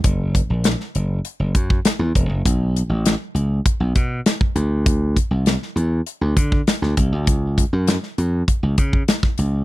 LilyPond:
<<
  \new Staff \with { instrumentName = "Slap bass" } { \clef bass \time 4/4 \key b \minor \tempo 4 = 100 fis,,8. ais,,8 r16 fis,,8 r16 fis,,16 fis,8 r16 e,16 e,,16 fis,,16 | b,,8. a,,8 r16 cis,8 r16 b,,16 b,8 r8 d,8~ | d,8. c,8 r16 e,8 r16 d,16 d8 r16 d,16 c,16 d,16 | cis,8. fis,8 r16 eis,8 r16 cis,16 cis8 r8 cis,8 | }
  \new DrumStaff \with { instrumentName = "Drums" } \drummode { \time 4/4 <hh bd>8 <hh bd>8 <hh sn>16 sn16 hh8 hh8 <hh bd>16 bd16 <hh sn>8 <hh bd>8 | <hh bd>8 hh8 <hh sn>8 hh8 <hh bd>8 <hh bd>8 <hh sn>16 bd16 hh8 | <hh bd>8 <hh bd>8 <hh sn>16 sn16 hh8 hh8 <hh bd>16 bd16 <hh sn>16 sn16 <hh bd>8 | <hh bd>8 <hh bd>8 <hh sn>16 sn16 hh8 <hh bd>8 <hh bd>16 bd16 <hh sn>16 <bd sn>16 hh8 | }
>>